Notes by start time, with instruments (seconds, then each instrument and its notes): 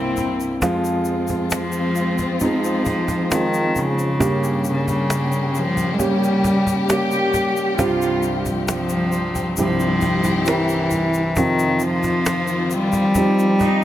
Already playing: grand piano C2 G2 C3 A#3 C4 E4, string section C3 G3 A#3 E4, cello section C4, cello E4
0.17 cajon bass, shaker
0.40 shaker
0.62 grand piano F2 F3 G#3 C4 F4, string section F3 G#3 C4 F4, cajon bass, shaker
0.85 shaker
1.05 shaker
1.28 cajon bass, shaker
1.50 cajon slap, shaker
1.55 cello F3
1.72 shaker
1.96 shaker
2.18 cajon bass, shaker
2.40 grand piano F3 G#3 C4 D#4, cello F3, cajon bass, shaker
2.64 shaker
2.85 cajon bass, shaker
3.08 cajon bass, shaker
3.31 cello D#3, grand piano F3 G#3 C4 F4, cajon slap, shaker
3.54 shaker
3.76 cello C#3, cajon bass, shaker
3.99 shaker
4.20 grand piano G2 G3 A#3 C#4 G4, string section C#3 G3 A#3 G4, cajon bass, shaker
4.44 shaker
4.64 shaker
4.69 cello C#3
4.88 cajon bass, shaker
5.10 cajon slap, shaker
5.32 shaker
5.55 cello F3, shaker
5.77 cajon bass, shaker
5.93 cello G#3
5.98 grand piano G3 A#3 C#4 G4, cello G3, cajon bass, shaker
6.24 shaker
6.44 cajon bass, shaker
6.67 cajon bass, shaker
6.89 grand piano G3 A#3 C#4 G4, cello section G4, cajon slap, shaker
7.11 shaker
7.34 cajon bass, shaker
7.57 shaker
7.79 grand piano C2 G2 G3 C4 F4 G4, string section F3 C4, cello section F4, cajon bass, shaker
8.02 shaker
8.23 shaker
8.46 cajon bass, shaker
8.68 cello F3, cajon slap, shaker
8.89 shaker
9.12 shaker
9.35 cajon bass, shaker
9.57 grand piano C2 G2 G3 C4 E4 G4, cello F3, string section E4 G4, cajon bass, shaker
9.80 shaker
10.01 cajon bass, shaker
10.24 cajon bass, shaker
10.46 grand piano G3 C4 E4 A#4, cajon slap, shaker
10.50 cello E3
10.69 shaker
10.91 cajon bass, shaker
11.14 shaker
11.36 grand piano F2 C3 F3 C4 D#4 F4, string section D#3 F3 C4 F4, cello D#3, cajon bass, shaker
11.59 shaker
11.79 cello F3, shaker
12.03 cajon bass, shaker
12.26 cajon slap, shaker
12.47 shaker
12.71 cello G3, shaker
12.92 cajon bass, shaker
13.15 grand piano F3 C4 D#4 G4, cajon bass, shaker
13.39 shaker
13.60 cello section D#4, cajon bass, shaker